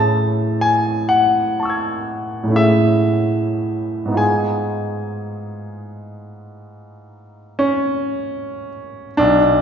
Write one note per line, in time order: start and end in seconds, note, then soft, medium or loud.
0.00 2.42 A2 soft
0.00 2.46 A3 soft
0.00 2.48 C#4 soft
0.00 2.50 E4 soft
0.00 2.54 G#4 soft
0.00 0.65 A5 medium
0.61 1.09 G#5 medium
1.09 2.58 F#5 medium
1.60 4.17 A5 soft
1.60 4.19 C#6 soft
1.65 4.20 E6 soft
1.70 4.22 G#6 soft
2.44 4.09 A2 soft
2.48 4.11 A3 soft
2.48 4.12 C#4 soft
2.48 4.13 E4 soft
2.56 4.15 G#4 soft
2.56 4.19 E5 medium
4.06 9.07 G#2 soft
4.06 9.09 B3 soft
4.12 9.10 D#4 soft
4.12 9.12 F4 soft
4.17 9.13 G#4 soft
4.17 8.68 G#5 medium
7.59 9.18 C#4 medium
9.17 9.62 B1 medium
9.17 9.62 D4 loud